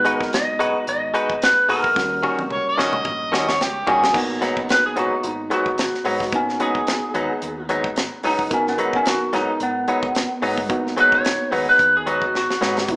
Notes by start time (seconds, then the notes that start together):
Already playing: G#1 G#3 B3 D#4 F#4 B4
0.05 G#3 D#4 F#4 B4, closed hi-hat
0.16 A#4
0.20 F#1, kick, snare
0.33 D#5, snare, closed hi-hat
0.59 F#1 G#3 D#4 F#4 B4, closed hi-hat
0.87 G#1 D#5, closed hi-hat
1.14 G#3 D#4 F#4 B4, closed hi-hat
1.30 G#1, kick
1.42 B4, snare, closed hi-hat
1.57 muted fingered electric bass stroke
1.68 A#1 G#3 D#4 F#4 A#4 B4, open hi-hat
1.84 kick
1.95 D#2 G3 A#3 C#4 F#4, kick, snare
2.23 D#3 G3 C#4 F#4, kick
2.38 C#2, high tom
2.50 C#5, mid tom
2.69 D#5
2.78 A#1 D#3 G3 C#4 F#4, snare
2.93 mid tom
3.05 A#1, kick, mid tom
3.32 D#2 D#3 G3 C#4 F#4, snare
3.49 C#5, snare
3.60 C#2 G4, snare
3.87 A#1 D#3 G3 A#3 C#4 F#4 G#4, floor tom
4.04 snare
4.13 G#1 A#3 B3 D#4 F#4, kick, crash
4.41 G#2 F#3 B3 D#4, snare, closed hi-hat
4.57 F#1, kick
4.69 B4, snare, closed hi-hat
4.86 G#4
4.96 F#1 G#2 F#3 B3 D#4 F#4, closed hi-hat
5.23 G#1 D#4, closed hi-hat
5.50 G#2 F#3 B3 D#4 F#4, closed hi-hat
5.66 G#1, kick
5.78 snare, closed hi-hat
5.94 muted fingered electric bass stroke, snare
6.05 G#2 F#3 B3 D#4, open hi-hat
6.20 kick, snare
6.32 A#3 B3 C#4 D#4 F#4, kick, closed hi-hat
6.49 snare
6.60 G#2 F#3 B3 D#4 G#4, closed hi-hat
6.75 F#1, kick
6.87 snare, closed hi-hat
7.14 D#2 G#2 F#3 B3 D#4, closed hi-hat
7.42 D#2, closed hi-hat
7.69 G#2 F#3 B3 D#4, closed hi-hat
7.84 G#1, kick
7.96 snare, closed hi-hat
8.23 F#1 G#2 F#3 B3 D#4, open hi-hat
8.39 kick
8.50 G#1 B3 C#4 D#4 F#4 A#4, kick, closed hi-hat
8.67 B3, snare
8.78 G#2 F#3 B3 D#4, closed hi-hat
8.93 F#1 C#4, kick
9.05 F#4, snare, closed hi-hat
9.33 F#1 G#2 F#3 B3 D#4, snare, closed hi-hat
9.60 G#1 B3, closed hi-hat
9.88 G#2 F#3 B3 D#4, closed hi-hat
10.03 G#1, kick
10.15 snare, closed hi-hat
10.42 G#2 F#3 B3 D#4, open hi-hat
10.58 kick
10.69 G#1 A#3 B3 D#4 F#4, kick, closed hi-hat
10.87 snare
10.97 G#2 F#3 B3 D#4 B4, closed hi-hat
11.12 F#1 C#5, kick
11.25 snare, closed hi-hat
11.51 D#2 G#2 F#3 B3 D#4 B4, open hi-hat
11.69 B4
11.79 D#2, kick, closed hi-hat
11.97 G#4
12.06 G#2 F#3 B3 D#4 F#4, closed hi-hat
12.22 G#1, kick
12.35 F#4, snare
12.50 snare
12.61 G#2 F#3 B3 D#4, snare
12.78 snare
12.88 C#2 G#3 B3 D#4 E4, kick, closed hi-hat